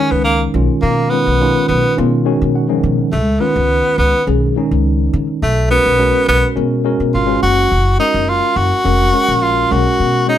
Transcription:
0.00 0.53 D#3 medium
0.00 0.53 G#3 medium
0.00 0.13 C#4 medium
0.00 0.54 C#4 medium
0.00 0.55 D#4 medium
0.11 0.48 C#2 medium
0.11 0.24 B3 medium
0.24 0.42 A#3 medium
0.54 0.67 B1 medium
0.54 1.08 D#3 medium
0.54 1.08 G#3 medium
0.54 1.08 C#4 medium
0.54 1.08 F4 medium
0.82 1.20 B2 medium
0.82 1.11 A#3 medium
1.10 1.38 D#3 medium
1.10 1.39 G#3 medium
1.10 1.67 B3 medium
1.10 1.39 C#4 medium
1.10 1.39 F4 medium
1.27 1.51 B1 medium
1.40 1.94 D#3 medium
1.40 1.94 G#3 medium
1.40 1.95 C#4 medium
1.40 1.95 F4 medium
1.68 1.82 B1 medium
1.68 1.95 B3 medium
1.96 2.35 B2 medium
1.96 2.24 D#3 medium
1.96 2.24 G#3 medium
1.96 2.24 C#4 medium
1.96 2.25 F4 medium
2.25 2.66 D#3 medium
2.25 2.67 G#3 medium
2.25 2.67 C#4 medium
2.25 2.67 F#4 medium
2.42 2.78 B2 medium
2.55 3.09 F#5 medium
2.69 3.12 D#3 medium
2.69 3.12 F3 loud
2.69 3.12 G#3 medium
2.69 3.12 C#4 medium
2.83 2.96 B2 medium
2.99 muted upright bass stroke soft
3.12 3.37 C#2 medium
3.12 3.42 A3 medium
3.40 4.21 D#3 medium
3.40 4.21 G#3 medium
3.40 3.98 B3 medium
3.40 4.21 C#4 medium
3.40 4.21 F4 medium
3.56 3.80 C#2 medium
3.98 4.11 C#2 medium
3.98 4.25 B3 medium
4.26 4.52 B1 medium
4.26 4.53 D#3 medium
4.26 4.54 G#3 medium
4.26 4.54 C#4 medium
4.26 4.54 G#4 medium
4.56 5.42 D#3 medium
4.56 5.42 G#3 medium
4.56 5.42 C#4 medium
4.56 5.43 D#4 loud
4.71 5.07 C#2 medium
5.13 5.26 C#3 medium
5.42 5.79 B1 medium
5.42 5.69 A3 medium
5.70 5.97 G#3 medium
5.70 6.24 B3 medium
5.70 5.97 C#4 medium
5.70 5.98 F#4 medium
5.70 5.98 A#4 medium
5.86 6.10 B1 medium
5.99 6.53 G#3 medium
5.99 6.53 C#4 medium
5.99 6.53 F#4 medium
5.99 6.53 A#4 medium
6.28 6.41 B1 loud
6.28 6.45 B3 medium
6.56 6.94 B2 medium
6.56 6.83 G#3 medium
6.56 6.83 C#4 medium
6.56 6.83 F#4 medium
6.56 6.83 A#4 medium
6.85 7.25 G#3 medium
6.85 7.25 C#4 medium
6.85 7.26 F#4 medium
6.85 7.26 A#4 loud
7.00 7.12 B2 medium
7.14 7.40 G#1 medium
7.14 7.41 F4 medium
7.27 7.70 G#3 medium
7.27 7.70 C#4 medium
7.27 7.70 F#4 medium
7.27 7.71 B4 medium
7.43 7.71 F#1 medium
7.43 7.96 F#4 loud
7.72 7.96 F#1 medium
7.99 8.80 G#3 medium
7.99 8.80 C#4 medium
7.99 8.31 D#4 medium
7.99 8.80 F#4 medium
7.99 8.80 A#4 medium
8.14 8.39 F#1 medium
8.29 8.58 F4 medium
8.56 8.69 F#1 medium
8.56 9.44 F#4 loud
8.84 9.10 F1 medium
8.84 9.12 G#3 medium
8.84 9.12 C#4 medium
8.84 9.12 F#4 medium
8.84 9.12 A#4 medium
9.13 9.69 G#3 medium
9.13 9.70 C#4 medium
9.13 9.70 F#4 medium
9.13 9.71 A#4 medium
9.28 9.65 A#1 medium
9.43 9.73 F4 medium
9.71 9.84 B1 medium
9.71 10.25 G#3 medium
9.71 10.25 C#4 medium
9.71 10.25 F#4 medium
9.71 10.28 F#4 loud
9.71 10.25 A#4 medium
10.00 10.37 B2 medium
10.27 10.38 G#3 medium
10.27 10.38 C#4 medium
10.27 10.38 D#4 medium
10.27 10.38 F#4 medium
10.27 10.38 C#5 medium

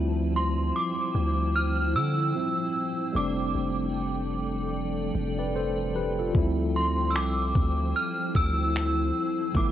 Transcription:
0.00 0.72 D2 loud
0.00 2.30 F3 medium
0.00 3.11 F3 medium
0.00 2.31 G3 medium
0.00 2.32 C4 medium
0.00 2.33 E4 medium
0.00 3.11 E4 medium
0.00 3.11 C5 medium
0.00 9.51 G5 medium
0.36 0.77 C6 medium
0.76 1.58 D6 medium
1.15 1.96 D2 loud
1.56 1.96 F6 loud
1.95 2.33 D3 loud
1.95 3.19 E6 loud
2.34 3.14 F3 soft
2.34 3.11 G3 soft
2.34 3.15 C4 soft
2.34 3.16 E4 medium
3.13 3.53 F1 loud
3.13 9.72 F3 medium
3.13 5.10 G3 medium
3.13 5.11 A3 medium
3.13 5.12 C4 medium
3.13 6.32 A4 medium
3.13 6.32 D5 medium
3.13 4.72 D6 medium
3.18 5.13 D4 medium
3.55 5.11 F1 loud
5.15 6.31 F1 loud
5.39 5.55 B4 soft
5.39 5.54 D5 medium
5.56 5.94 A4 medium
5.56 5.93 C5 medium
5.96 6.18 G4 medium
5.96 6.17 B4 medium
6.19 6.57 F4 medium
6.19 6.56 A4 medium
6.33 7.16 D2 loud
6.33 9.50 F3 medium
6.33 9.51 G3 medium
6.33 9.52 C4 medium
6.33 9.72 E4 medium
6.33 9.52 C5 medium
6.33 kick loud
6.38 9.52 E4 medium
6.76 7.11 C6 medium
7.10 7.16 E6 medium
7.15 7.53 C2 loud
7.15 7.98 D6 medium
7.15 finger snap loud
7.55 7.93 D2 loud
7.55 kick medium
7.96 8.10 F6 loud
8.35 9.12 D2 loud
8.35 9.59 E6 loud
8.35 kick medium
8.76 finger snap loud
9.53 9.72 G1 loud
9.53 9.72 F3 medium
9.53 9.72 A3 medium
9.53 9.72 B3 medium
9.53 9.72 B4 medium
9.53 9.72 A5 medium
9.53 9.72 D6 medium
9.53 kick loud
9.58 9.72 E4 medium

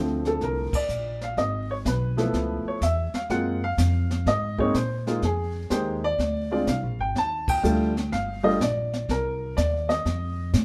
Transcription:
0.00 0.39 D2 medium
0.00 0.67 D3 medium
0.00 0.67 F3 medium
0.00 0.67 A3 medium
0.00 0.68 C4 medium
0.25 0.41 A4 medium
0.25 snare soft
0.41 0.71 C2 medium
0.41 0.75 A#4 medium
0.41 brush sweep medium
0.41 kick soft
0.41 snare soft
0.73 1.24 D5 medium
0.73 muted upright bass stroke soft
0.73 kick medium
0.73 ride medium
0.89 1.35 A#1 medium
0.89 hi-hat pedal soft
1.21 1.39 F5 medium
1.21 snare soft
1.37 1.84 G#1 medium
1.37 1.71 D#5 medium
1.37 brush sweep soft
1.37 kick soft
1.37 snare soft
1.71 1.76 C#5 medium
1.85 2.32 B1 medium
1.85 2.63 B4 medium
1.85 kick soft
1.85 snare medium
1.85 hi-hat pedal medium
2.17 2.78 F3 medium
2.17 2.79 A3 medium
2.17 2.78 B3 medium
2.17 2.79 E4 medium
2.17 snare soft
2.33 2.63 C#2 medium
2.33 brush sweep soft
2.33 kick soft
2.33 snare soft
2.65 2.82 C#5 medium
2.65 muted upright bass stroke soft
2.81 3.11 E2 medium
2.81 3.15 E5 medium
2.81 kick soft
2.81 snare medium
2.81 hi-hat pedal medium
3.14 3.31 F5 medium
3.14 muted upright bass stroke soft
3.14 snare soft
3.30 3.76 F#2 medium
3.30 3.59 G#3 medium
3.30 3.59 A#3 medium
3.30 3.59 C4 medium
3.30 3.59 F4 medium
3.30 3.63 F#5 medium
3.30 brush sweep soft
3.30 kick soft
3.30 snare soft
3.64 4.29 F5 loud
3.77 4.24 F2 medium
3.77 kick soft
3.77 snare medium
3.77 hi-hat pedal medium
4.11 snare soft
4.26 4.73 G#2 medium
4.26 4.57 D#5 medium
4.26 brush sweep medium
4.26 kick soft
4.26 snare soft
4.58 4.73 G#3 medium
4.58 4.73 A#3 medium
4.58 4.73 C4 medium
4.58 4.73 D#4 medium
4.58 4.74 C#5 medium
4.58 kick medium
4.74 5.21 A#2 medium
4.74 5.20 C5 medium
4.74 kick soft
4.74 snare medium
4.74 hi-hat pedal medium
5.07 5.21 G#3 medium
5.07 5.21 A#3 medium
5.07 5.22 D#4 medium
5.07 5.22 F4 medium
5.07 snare soft
5.22 5.69 F2 medium
5.22 5.69 G#4 medium
5.22 brush sweep medium
5.22 kick soft
5.22 snare soft
5.70 6.17 D#2 medium
5.70 6.00 G#3 medium
5.70 6.00 A#3 medium
5.70 6.00 D#4 medium
5.70 6.00 G4 medium
5.70 6.04 C5 medium
5.70 kick soft
5.70 snare medium
5.70 hi-hat pedal medium
6.04 6.51 D5 loud
6.19 6.66 D2 medium
6.19 brush sweep soft
6.19 kick soft
6.19 snare soft
6.51 6.66 G#3 medium
6.51 6.66 C4 medium
6.51 6.66 D4 medium
6.51 6.66 F4 medium
6.51 6.68 D5 medium
6.67 6.83 C2 medium
6.67 7.01 F5 medium
6.67 kick soft
6.67 snare medium
6.67 hi-hat pedal medium
6.83 6.98 A#1 medium
6.99 7.14 G#1 medium
6.99 7.16 G5 medium
7.15 7.62 D#2 medium
7.15 7.50 A5 loud
7.15 brush sweep soft
7.15 kick soft
7.15 snare soft
7.48 8.09 G5 loud
7.48 kick medium
7.48 ride medium
7.63 8.10 D2 medium
7.63 7.93 G3 medium
7.63 7.93 A3 medium
7.63 7.93 D4 medium
7.63 7.93 F4 medium
7.63 hi-hat pedal medium
7.97 snare soft
8.12 8.59 G1 medium
8.12 8.45 F5 loud
8.12 brush sweep medium
8.12 kick soft
8.12 snare soft
8.43 8.58 G3 medium
8.43 8.59 A3 medium
8.43 8.59 D4 medium
8.43 8.59 F4 medium
8.43 8.59 D#5 medium
8.60 9.07 A#1 medium
8.60 9.11 D5 medium
8.60 kick soft
8.60 snare medium
8.60 hi-hat pedal medium
8.93 snare soft
9.09 9.55 C2 medium
9.09 9.55 A#4 medium
9.09 brush sweep soft
9.09 kick soft
9.09 snare soft
9.57 10.04 D#2 medium
9.57 9.87 D5 medium
9.57 kick soft
9.57 snare medium
9.57 hi-hat pedal soft
9.89 10.49 D#5 medium
9.89 snare soft
10.05 10.52 F2 medium
10.05 brush sweep soft
10.05 kick soft
10.05 snare soft
10.53 10.65 A2 medium
10.53 kick soft
10.53 snare medium
10.53 hi-hat pedal medium

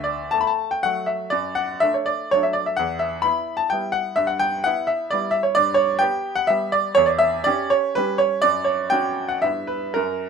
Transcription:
0.00 0.32 D2 medium
0.00 0.32 D5 medium
0.00 0.37 E5 loud
0.31 0.80 A3 medium
0.31 0.41 A5 loud
0.41 0.49 B5 medium
0.47 0.71 A5 medium
0.71 0.84 G5 medium
0.83 1.28 F#3 medium
0.83 1.28 A3 medium
0.83 1.08 F#5 loud
1.06 1.31 E5 medium
1.30 1.81 F#2 medium
1.30 1.55 D5 loud
1.55 1.81 F#5 loud
1.80 2.28 A3 medium
1.80 2.28 D4 medium
1.80 1.94 E5 loud
1.94 2.07 C#5 medium
2.06 2.31 D5 medium
2.31 2.75 F#3 soft
2.31 2.75 A3 soft
2.31 2.75 D4 medium
2.31 2.44 C#5 loud
2.43 2.55 E5 medium
2.53 2.66 D5 medium
2.66 2.78 E5 medium
2.77 3.23 E2 medium
2.77 3.00 F#5 loud
2.99 3.23 E5 medium
3.22 3.67 B3 medium
3.22 3.67 E4 medium
3.22 3.58 B5 loud
3.57 3.70 A5 medium
3.70 4.13 G3 soft
3.70 4.13 B3 soft
3.70 4.14 E4 medium
3.70 3.94 G5 loud
3.92 4.16 F#5 loud
4.16 4.63 G2 medium
4.16 4.28 E5 loud
4.27 4.39 F#5 medium
4.39 4.64 G5 loud
4.64 5.08 B3 medium
4.64 5.08 E4 medium
4.64 4.88 F#5 loud
4.87 5.11 E5 loud
5.11 5.52 G3 medium
5.11 5.52 B3 soft
5.11 5.53 E4 medium
5.11 5.33 D5 loud
5.31 5.43 E5 loud
5.43 5.55 C#5 medium
5.55 6.00 G2 medium
5.55 5.77 D5 loud
5.74 6.00 C#5 loud
5.99 6.46 B3 medium
5.99 6.46 G4 medium
5.99 6.37 G5 loud
6.36 6.49 F#5 loud
6.47 6.93 G3 medium
6.47 6.94 B3 medium
6.47 6.94 G4 medium
6.47 6.73 E5 loud
6.72 6.96 D5 loud
6.95 7.45 E2 medium
6.95 7.08 C#5 loud
7.06 7.19 D5 medium
7.19 7.45 E5 loud
7.44 7.92 C#4 medium
7.44 7.92 G4 medium
7.44 7.71 D5 loud
7.70 7.95 C#5 loud
7.95 8.39 G3 medium
7.95 8.39 C#4 medium
7.95 8.39 G4 medium
7.95 8.19 B4 loud
8.18 8.42 C#5 loud
8.42 8.91 F#2 medium
8.42 8.66 D5 loud
8.64 8.91 C#5 medium
8.90 9.39 C#4 medium
8.90 9.39 F#4 medium
8.90 9.29 G5 loud
9.29 9.42 F#5 medium
9.42 9.94 G2 medium
9.42 9.92 B3 medium
9.42 9.92 E4 soft
9.42 9.68 E5 loud
9.67 9.95 B4 medium
9.94 10.29 F#2 medium
9.94 10.29 A#4 medium

